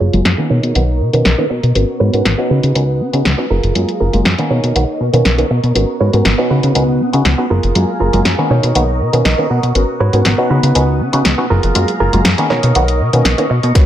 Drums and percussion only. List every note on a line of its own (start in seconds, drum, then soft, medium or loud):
0.13 closed hi-hat soft
0.25 snare loud
0.25 closed hi-hat medium
0.63 closed hi-hat soft
0.75 closed hi-hat medium
1.13 closed hi-hat soft
1.25 snare loud
1.25 closed hi-hat medium
1.63 closed hi-hat soft
1.75 closed hi-hat medium
2.14 closed hi-hat soft
2.25 snare loud
2.25 closed hi-hat medium
2.63 closed hi-hat soft
2.75 closed hi-hat medium
3.13 closed hi-hat soft
3.25 snare loud
3.25 closed hi-hat medium
3.63 closed hi-hat soft
3.75 closed hi-hat medium
3.89 closed hi-hat soft
4.13 closed hi-hat soft
4.25 snare loud
4.25 closed hi-hat medium
4.39 closed hi-hat soft
4.64 closed hi-hat soft
4.76 closed hi-hat medium
5.14 closed hi-hat soft
5.25 snare loud
5.25 closed hi-hat medium
5.38 closed hi-hat soft
5.64 closed hi-hat soft
5.75 closed hi-hat medium
6.13 closed hi-hat soft
6.25 snare loud
6.25 closed hi-hat medium
6.63 closed hi-hat soft
6.75 closed hi-hat medium
7.13 closed hi-hat soft
7.25 snare loud
7.25 closed hi-hat medium
7.63 closed hi-hat soft
7.75 closed hi-hat medium
8.13 closed hi-hat soft
8.25 snare loud
8.25 closed hi-hat medium
8.63 closed hi-hat soft
8.75 closed hi-hat medium
9.13 closed hi-hat soft
9.25 snare loud
9.25 closed hi-hat medium
9.63 closed hi-hat soft
9.75 closed hi-hat medium
10.13 closed hi-hat soft
10.25 snare loud
10.25 closed hi-hat medium
10.63 closed hi-hat medium
10.75 closed hi-hat medium
11.13 closed hi-hat medium
11.25 snare loud
11.25 closed hi-hat medium
11.63 closed hi-hat soft
11.75 closed hi-hat medium
11.88 closed hi-hat soft
12.13 closed hi-hat soft
12.25 snare loud
12.25 closed hi-hat medium
12.38 closed hi-hat soft
12.50 snare soft
12.63 closed hi-hat soft
12.75 closed hi-hat medium
12.88 closed hi-hat soft
13.13 closed hi-hat soft
13.25 snare loud
13.25 closed hi-hat medium
13.38 closed hi-hat soft
13.63 closed hi-hat soft
13.75 kick loud
13.75 snare soft
13.75 closed hi-hat medium